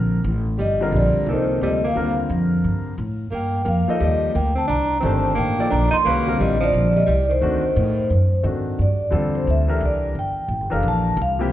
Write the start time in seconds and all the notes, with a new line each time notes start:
Already playing: A#1 D3 G3 C4 F4 A#4
0.24 A1
0.58 G1 G3 D#5
0.81 D3 G3 C4 F4 A#4
0.92 A#1 G3
0.97 D5
1.15 muted upright bass stroke
1.26 C2 C3 D#3 F3 A#3 D#4 A4
1.32 C5
1.61 D2 C3 F3 G3 A#3 D#4 A4 D#5
1.84 A#3 F5
1.95 D#2 D3 G3 C4 F4 A#4
2.29 F2
2.64 G2
2.98 A2
3.31 G2 A#3 G5
3.65 F2 A#3 F5
3.88 F3 A#3 D#4 A4 D#5, muted upright bass stroke
3.99 D#2 G3
4.04 D#5
4.34 D2 A#3 G5
4.55 C4 A5
4.67 C2 D4 A#5
5.00 G1 D#3 A3 C4 D4
5.04 G4 C5 A5
5.35 A1 A#3 G5
5.58 F3 A#3 D#4 A4 D5
5.70 A#1 D4 A#5
5.91 D#4 C6, muted upright bass stroke
6.05 C2 D#3 G#3 A#3 C#4 F#4 B4 F5
6.27 D3 G3 C4 F4 A#4
6.40 A1 G3 D#5
6.60 F3 D5
6.74 A#1
6.91 F3 D5
6.95 G3 D#5
7.06 C2 G3 D5
7.29 D#3 C5
7.41 D2 D#3 A3 C4 D4 F#4
7.76 A2
8.10 F#2
8.43 G#2 D#3 C4 D4 F#4 A4
8.79 G2 D5
9.11 E2 D3 G3 C4 F4 A4
9.35 C5
9.47 D2 E5
9.68 E3 D4 G4 A4 A#4
9.81 C2
9.86 D5
10.15 G1
10.19 G5
10.48 A1
10.60 G1
10.70 F1 E3 D4 G4 A4 A#4 F5
10.83 A#1
10.88 A5
11.17 C2
11.22 F5
11.39 C3 F3 A#3 E4 G4